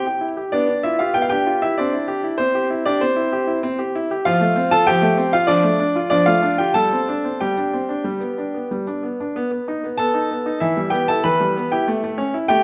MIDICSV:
0, 0, Header, 1, 2, 480
1, 0, Start_track
1, 0, Key_signature, 0, "major"
1, 0, Tempo, 620476
1, 1380, Time_signature, 4, 2, 24, 8
1, 4727, Tempo, 647948
1, 7127, Tempo, 629591
1, 9631, End_track
2, 0, Start_track
2, 0, Title_t, "Grand piano"
2, 0, Program_c, 0, 0
2, 0, Note_on_c, 0, 79, 83
2, 52, Note_on_c, 0, 67, 45
2, 161, Note_on_c, 0, 64, 45
2, 177, Note_off_c, 0, 67, 0
2, 212, Note_off_c, 0, 79, 0
2, 285, Note_on_c, 0, 67, 46
2, 293, Note_off_c, 0, 64, 0
2, 403, Note_on_c, 0, 74, 69
2, 407, Note_on_c, 0, 62, 54
2, 410, Note_off_c, 0, 67, 0
2, 410, Note_on_c, 0, 59, 59
2, 519, Note_off_c, 0, 62, 0
2, 530, Note_off_c, 0, 59, 0
2, 530, Note_on_c, 0, 62, 44
2, 627, Note_off_c, 0, 74, 0
2, 645, Note_on_c, 0, 76, 75
2, 653, Note_on_c, 0, 64, 58
2, 653, Note_on_c, 0, 65, 48
2, 661, Note_off_c, 0, 62, 0
2, 766, Note_off_c, 0, 65, 0
2, 766, Note_on_c, 0, 77, 73
2, 768, Note_off_c, 0, 64, 0
2, 770, Note_on_c, 0, 67, 49
2, 773, Note_off_c, 0, 76, 0
2, 778, Note_on_c, 0, 65, 59
2, 883, Note_on_c, 0, 79, 88
2, 889, Note_on_c, 0, 59, 54
2, 891, Note_off_c, 0, 65, 0
2, 893, Note_off_c, 0, 77, 0
2, 901, Note_off_c, 0, 67, 0
2, 944, Note_on_c, 0, 77, 71
2, 945, Note_off_c, 0, 79, 0
2, 1001, Note_on_c, 0, 79, 87
2, 1002, Note_off_c, 0, 77, 0
2, 1006, Note_on_c, 0, 67, 66
2, 1011, Note_off_c, 0, 59, 0
2, 1020, Note_on_c, 0, 62, 51
2, 1135, Note_on_c, 0, 65, 50
2, 1146, Note_off_c, 0, 62, 0
2, 1242, Note_off_c, 0, 67, 0
2, 1254, Note_on_c, 0, 76, 76
2, 1256, Note_on_c, 0, 67, 48
2, 1258, Note_off_c, 0, 79, 0
2, 1263, Note_off_c, 0, 65, 0
2, 1263, Note_on_c, 0, 64, 56
2, 1373, Note_off_c, 0, 64, 0
2, 1374, Note_on_c, 0, 74, 66
2, 1377, Note_off_c, 0, 76, 0
2, 1378, Note_off_c, 0, 67, 0
2, 1382, Note_on_c, 0, 62, 52
2, 1384, Note_on_c, 0, 60, 61
2, 1494, Note_on_c, 0, 64, 49
2, 1498, Note_off_c, 0, 60, 0
2, 1607, Note_on_c, 0, 67, 58
2, 1623, Note_off_c, 0, 64, 0
2, 1730, Note_on_c, 0, 64, 50
2, 1739, Note_off_c, 0, 67, 0
2, 1829, Note_off_c, 0, 62, 0
2, 1839, Note_on_c, 0, 72, 85
2, 1851, Note_on_c, 0, 60, 60
2, 1856, Note_off_c, 0, 74, 0
2, 1861, Note_off_c, 0, 64, 0
2, 1970, Note_on_c, 0, 67, 49
2, 2061, Note_off_c, 0, 72, 0
2, 2091, Note_on_c, 0, 64, 57
2, 2101, Note_off_c, 0, 67, 0
2, 2190, Note_off_c, 0, 60, 0
2, 2209, Note_on_c, 0, 74, 82
2, 2210, Note_on_c, 0, 67, 58
2, 2216, Note_on_c, 0, 62, 62
2, 2221, Note_off_c, 0, 64, 0
2, 2330, Note_off_c, 0, 62, 0
2, 2330, Note_on_c, 0, 72, 77
2, 2334, Note_off_c, 0, 74, 0
2, 2336, Note_on_c, 0, 60, 58
2, 2341, Note_off_c, 0, 67, 0
2, 2446, Note_on_c, 0, 64, 55
2, 2573, Note_on_c, 0, 67, 59
2, 2580, Note_off_c, 0, 64, 0
2, 2686, Note_on_c, 0, 64, 57
2, 2704, Note_off_c, 0, 67, 0
2, 2766, Note_off_c, 0, 72, 0
2, 2798, Note_off_c, 0, 60, 0
2, 2810, Note_on_c, 0, 60, 68
2, 2821, Note_off_c, 0, 64, 0
2, 2929, Note_on_c, 0, 67, 59
2, 2932, Note_off_c, 0, 60, 0
2, 3059, Note_on_c, 0, 64, 63
2, 3061, Note_off_c, 0, 67, 0
2, 3179, Note_on_c, 0, 67, 59
2, 3186, Note_off_c, 0, 64, 0
2, 3290, Note_on_c, 0, 77, 94
2, 3296, Note_on_c, 0, 53, 73
2, 3298, Note_on_c, 0, 65, 74
2, 3299, Note_off_c, 0, 67, 0
2, 3408, Note_on_c, 0, 57, 60
2, 3412, Note_off_c, 0, 53, 0
2, 3527, Note_on_c, 0, 60, 69
2, 3537, Note_off_c, 0, 57, 0
2, 3629, Note_off_c, 0, 65, 0
2, 3643, Note_on_c, 0, 65, 62
2, 3647, Note_on_c, 0, 81, 108
2, 3649, Note_off_c, 0, 77, 0
2, 3654, Note_on_c, 0, 69, 76
2, 3656, Note_off_c, 0, 60, 0
2, 3764, Note_off_c, 0, 69, 0
2, 3765, Note_on_c, 0, 79, 113
2, 3769, Note_off_c, 0, 81, 0
2, 3772, Note_on_c, 0, 67, 79
2, 3773, Note_off_c, 0, 65, 0
2, 3774, Note_on_c, 0, 53, 73
2, 3882, Note_on_c, 0, 57, 66
2, 3889, Note_off_c, 0, 53, 0
2, 4002, Note_on_c, 0, 60, 66
2, 4011, Note_off_c, 0, 57, 0
2, 4104, Note_off_c, 0, 67, 0
2, 4123, Note_on_c, 0, 77, 96
2, 4126, Note_off_c, 0, 79, 0
2, 4131, Note_off_c, 0, 60, 0
2, 4132, Note_on_c, 0, 65, 74
2, 4231, Note_on_c, 0, 74, 93
2, 4238, Note_on_c, 0, 53, 74
2, 4242, Note_off_c, 0, 65, 0
2, 4242, Note_on_c, 0, 62, 74
2, 4246, Note_off_c, 0, 77, 0
2, 4358, Note_on_c, 0, 57, 60
2, 4359, Note_off_c, 0, 53, 0
2, 4474, Note_off_c, 0, 62, 0
2, 4486, Note_on_c, 0, 62, 63
2, 4489, Note_off_c, 0, 57, 0
2, 4608, Note_on_c, 0, 65, 64
2, 4613, Note_off_c, 0, 62, 0
2, 4706, Note_off_c, 0, 74, 0
2, 4718, Note_on_c, 0, 74, 90
2, 4726, Note_on_c, 0, 62, 72
2, 4727, Note_on_c, 0, 53, 69
2, 4734, Note_off_c, 0, 65, 0
2, 4835, Note_off_c, 0, 62, 0
2, 4837, Note_on_c, 0, 77, 90
2, 4839, Note_off_c, 0, 74, 0
2, 4840, Note_off_c, 0, 53, 0
2, 4844, Note_on_c, 0, 57, 53
2, 4847, Note_on_c, 0, 65, 73
2, 4958, Note_on_c, 0, 62, 58
2, 4966, Note_off_c, 0, 57, 0
2, 5063, Note_off_c, 0, 65, 0
2, 5074, Note_off_c, 0, 77, 0
2, 5076, Note_on_c, 0, 79, 77
2, 5081, Note_on_c, 0, 65, 51
2, 5083, Note_off_c, 0, 62, 0
2, 5087, Note_on_c, 0, 67, 61
2, 5194, Note_off_c, 0, 67, 0
2, 5194, Note_on_c, 0, 81, 89
2, 5196, Note_off_c, 0, 79, 0
2, 5199, Note_off_c, 0, 65, 0
2, 5201, Note_on_c, 0, 69, 71
2, 5202, Note_on_c, 0, 55, 61
2, 5317, Note_off_c, 0, 55, 0
2, 5332, Note_on_c, 0, 60, 51
2, 5447, Note_on_c, 0, 62, 56
2, 5452, Note_off_c, 0, 60, 0
2, 5569, Note_on_c, 0, 60, 49
2, 5571, Note_off_c, 0, 62, 0
2, 5655, Note_off_c, 0, 69, 0
2, 5681, Note_off_c, 0, 81, 0
2, 5686, Note_on_c, 0, 79, 67
2, 5688, Note_on_c, 0, 67, 51
2, 5692, Note_off_c, 0, 60, 0
2, 5693, Note_on_c, 0, 55, 56
2, 5805, Note_off_c, 0, 55, 0
2, 5810, Note_on_c, 0, 62, 48
2, 5930, Note_on_c, 0, 60, 50
2, 5933, Note_off_c, 0, 62, 0
2, 6046, Note_on_c, 0, 62, 49
2, 6053, Note_off_c, 0, 60, 0
2, 6159, Note_on_c, 0, 55, 59
2, 6166, Note_off_c, 0, 62, 0
2, 6276, Note_on_c, 0, 59, 43
2, 6279, Note_off_c, 0, 55, 0
2, 6408, Note_off_c, 0, 59, 0
2, 6409, Note_on_c, 0, 62, 46
2, 6530, Note_on_c, 0, 59, 44
2, 6535, Note_off_c, 0, 62, 0
2, 6620, Note_off_c, 0, 79, 0
2, 6622, Note_off_c, 0, 67, 0
2, 6654, Note_on_c, 0, 55, 53
2, 6656, Note_off_c, 0, 59, 0
2, 6768, Note_off_c, 0, 55, 0
2, 6773, Note_on_c, 0, 62, 46
2, 6890, Note_on_c, 0, 59, 44
2, 6898, Note_off_c, 0, 62, 0
2, 7015, Note_off_c, 0, 59, 0
2, 7019, Note_on_c, 0, 62, 44
2, 7133, Note_off_c, 0, 62, 0
2, 7134, Note_on_c, 0, 59, 65
2, 7242, Note_off_c, 0, 59, 0
2, 7253, Note_on_c, 0, 59, 48
2, 7379, Note_off_c, 0, 59, 0
2, 7379, Note_on_c, 0, 63, 56
2, 7500, Note_on_c, 0, 59, 52
2, 7501, Note_off_c, 0, 63, 0
2, 7601, Note_off_c, 0, 59, 0
2, 7603, Note_on_c, 0, 81, 88
2, 7613, Note_on_c, 0, 59, 58
2, 7616, Note_on_c, 0, 69, 65
2, 7729, Note_off_c, 0, 59, 0
2, 7731, Note_on_c, 0, 63, 49
2, 7858, Note_off_c, 0, 63, 0
2, 7858, Note_on_c, 0, 59, 51
2, 7972, Note_on_c, 0, 63, 52
2, 7982, Note_off_c, 0, 59, 0
2, 8064, Note_off_c, 0, 69, 0
2, 8083, Note_on_c, 0, 76, 74
2, 8089, Note_off_c, 0, 81, 0
2, 8089, Note_on_c, 0, 52, 64
2, 8092, Note_on_c, 0, 64, 61
2, 8093, Note_off_c, 0, 63, 0
2, 8208, Note_off_c, 0, 52, 0
2, 8208, Note_on_c, 0, 55, 53
2, 8304, Note_off_c, 0, 76, 0
2, 8310, Note_on_c, 0, 79, 84
2, 8317, Note_off_c, 0, 64, 0
2, 8318, Note_on_c, 0, 67, 61
2, 8320, Note_on_c, 0, 59, 55
2, 8337, Note_off_c, 0, 55, 0
2, 8437, Note_off_c, 0, 67, 0
2, 8442, Note_off_c, 0, 79, 0
2, 8447, Note_on_c, 0, 81, 85
2, 8451, Note_on_c, 0, 64, 54
2, 8453, Note_off_c, 0, 59, 0
2, 8460, Note_on_c, 0, 69, 64
2, 8566, Note_on_c, 0, 83, 97
2, 8569, Note_on_c, 0, 52, 64
2, 8570, Note_off_c, 0, 69, 0
2, 8572, Note_off_c, 0, 81, 0
2, 8576, Note_on_c, 0, 71, 74
2, 8580, Note_off_c, 0, 64, 0
2, 8689, Note_off_c, 0, 52, 0
2, 8693, Note_on_c, 0, 55, 54
2, 8810, Note_on_c, 0, 59, 59
2, 8821, Note_off_c, 0, 55, 0
2, 8912, Note_off_c, 0, 71, 0
2, 8931, Note_on_c, 0, 79, 71
2, 8932, Note_off_c, 0, 83, 0
2, 8933, Note_on_c, 0, 64, 56
2, 8935, Note_on_c, 0, 67, 56
2, 8940, Note_off_c, 0, 59, 0
2, 9047, Note_off_c, 0, 67, 0
2, 9053, Note_off_c, 0, 79, 0
2, 9054, Note_on_c, 0, 57, 66
2, 9055, Note_off_c, 0, 64, 0
2, 9164, Note_off_c, 0, 57, 0
2, 9175, Note_on_c, 0, 57, 56
2, 9283, Note_on_c, 0, 61, 64
2, 9300, Note_off_c, 0, 57, 0
2, 9406, Note_on_c, 0, 64, 60
2, 9413, Note_off_c, 0, 61, 0
2, 9516, Note_on_c, 0, 79, 102
2, 9524, Note_on_c, 0, 67, 76
2, 9526, Note_on_c, 0, 57, 64
2, 9533, Note_off_c, 0, 64, 0
2, 9628, Note_off_c, 0, 57, 0
2, 9631, Note_off_c, 0, 67, 0
2, 9631, Note_off_c, 0, 79, 0
2, 9631, End_track
0, 0, End_of_file